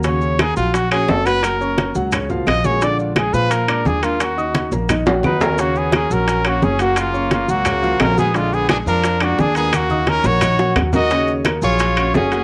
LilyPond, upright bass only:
\new Staff \with { instrumentName = "Upright bass" } { \clef bass \time 4/4 \key ees \minor \tempo 4 = 174 ees,4. bes,,4. ges,,4~ | ges,,4. des,4. bes,,4~ | bes,,4. bes,4. ees,4~ | ees,4. bes,,4. ees,4~ |
ees,4. bes,,4. ges,,4~ | ges,,4. des,4. bes,,4~ | bes,,4. f,4. ees,4~ | ees,4. bes,,4. ees,4~ |
ees,4. bes,,4. ges,,4 | }